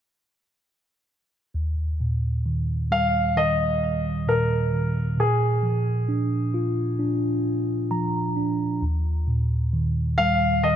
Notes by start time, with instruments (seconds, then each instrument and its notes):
1.54 tine electric piano D#2
2.00 tine electric piano A#2
2.46 tine electric piano D#3
2.91 tine electric piano G3, grand piano F5
3.36 tine electric piano D#3, grand piano D#5
4.27 tine electric piano A#2, grand piano A#4
4.72 tine electric piano D#3
5.17 tine electric piano A#2, grand piano G#4
5.63 tine electric piano F3
6.08 tine electric piano D4
6.54 tine electric piano F4
6.99 tine electric piano D4
7.91 tine electric piano F3 A#5
8.36 tine electric piano D4
8.82 tine electric piano D#2
9.27 tine electric piano A#2
9.73 tine electric piano D#3
10.18 tine electric piano G3, grand piano F5
10.63 tine electric piano D#3, grand piano D#5